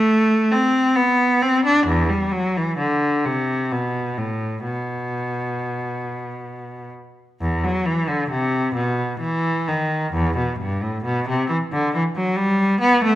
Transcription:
Already playing: A3
0.51 C4
0.96 B3
1.42 C4
1.65 D4
1.86 E2
2.09 G3
2.32 F#3
2.57 E3
2.78 D3
3.25 C3
3.71 B2
4.17 A2
4.64 B2
7.41 E2
7.64 F#3
7.85 E3
8.08 D3
8.30 C3
8.74 B2
9.20 E3
9.68 D#3
10.13 E2
10.37 B2
10.59 G2
10.83 A2
11.04 B2
11.29 C3
11.49 E3
11.73 D3
11.94 E3
12.16 F#3
12.36 G3
12.81 B3
13.04 A3

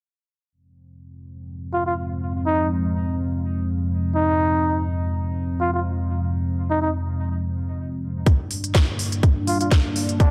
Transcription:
0.52 F2 F3 G#3 C4
1.73 F4
1.86 F4
2.46 D#4
4.15 D#4
5.60 F4
5.73 F4
6.70 D#4
6.81 D#4
8.26 G2 G3 A#3 D4, kick, closed hi-hat
8.51 open hi-hat
8.64 closed hi-hat
8.75 kick, snare, closed hi-hat
8.99 open hi-hat
9.12 closed hi-hat
9.23 kick, closed hi-hat
9.47 F4, open hi-hat
9.61 F4, closed hi-hat
9.71 kick, snare, closed hi-hat
9.96 open hi-hat
10.09 closed hi-hat
10.20 D4, kick, closed hi-hat

